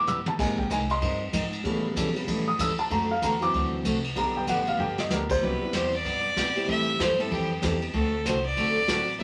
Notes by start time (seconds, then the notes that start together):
Already playing: E3 A3 B3
0.07 G1 G3 B3 E4 G4 E6, hi-hat pedal, mid tom
0.26 A5, high tom
0.38 G#1 C3 G#3 A#3 C4 D#4 A#4 G#5, kick, snare, crash
0.58 G5, kick
0.70 C2 G#3 C4 D#4 A#4 G#5, kick, hi-hat pedal, ride
0.90 D#5 C6, ride
1.01 G2 G#3 C4 D#4 A#4, kick, ride
1.33 G#2 G#3 C4 D#4 A#4, kick, hi-hat pedal, ride
1.52 ride
1.64 A2 C#3 E3 G3 B3 C#4 E4 A4, kick, ride
1.96 B2 E3 G3 C#4 E4 A4, kick, hi-hat pedal, ride
2.15 C#3 G3 B3, ride
2.27 A2 E3 G3 C#4 E4 A4, kick, ride
2.48 D#6
2.59 G2 E3 G3 C#4 E4 A4 E6, kick, hi-hat pedal, ride
2.78 A5, muted upright bass stroke, ride
2.90 F#2 D3 A3 C4 F#4 A4 A#5, kick, ride
3.11 F5
3.22 E2 D3 A3 C4 F#4 A4 A#5, kick, hi-hat pedal, ride
3.40 E3 F#3 C4 D6, ride
3.53 D2 D3 A3 C4 F#4 A4, kick, ride
3.85 C2 D3 A3 C4 F#4 A4, kick, hi-hat pedal, ride
4.04 ride
4.16 B1 D3 G3 B3 D4 G4 A#5, kick, ride
4.37 G5
4.47 A1 D3 G3 B3 D4 G4 F#5, kick, hi-hat pedal, ride
4.67 F5, ride
4.79 G1 D3 G3 B3 D4 G4 G5
4.98 D#5, snare
5.10 D2 D3 G3 B3 D4 G4 A#4, snare, hi-hat pedal
5.30 C5, kick, crash
5.41 C2 C3 F#3 G3 A#3 B3 C#4 D#4 E4 G4 B4, kick
5.61 G3 B3 C4 D4 E4, muted upright bass stroke
5.73 E2 C3 G3 B3 E4 G4 C5, kick, snare, hi-hat pedal, ride
5.93 D5, ride
6.05 G2 C3 G3 B3 E4 G4, kick, ride
6.36 B2 C3 G3 B3 E4 G4, kick, snare, hi-hat pedal, ride
6.55 G3 A3 C4 E4 G4, ride
6.67 A2 E3 G3 C4 E4 A4 E5, kick, ride
6.99 G2 E3 G3 C4 E4 A4 C5, kick, snare, hi-hat pedal, ride
7.18 G3 A3 C4 E4 G4 A4, ride
7.30 F2 E3 G3 C4 E4 G4 A4, kick, ride
7.61 E2 E3 G3 A3 C4 E4 G4 A4, kick, snare, hi-hat pedal, ride
7.82 ride
7.93 D2 D3 A3 C4 F#4 A4, kick, ride
8.25 C2 D3 A3 C4 F#4 A4 C5, kick, snare, hi-hat pedal, ride
8.46 D5
8.57 B1 D3 A3 C4 F#4 A4, kick, ride
8.88 A1 D3 F#3 A3 C4 D4 F#4 A4, kick, snare, hi-hat pedal, ride
9.07 ride
9.19 G1 C3 G#3 A#3 C#4 D#4 F#4, kick, ride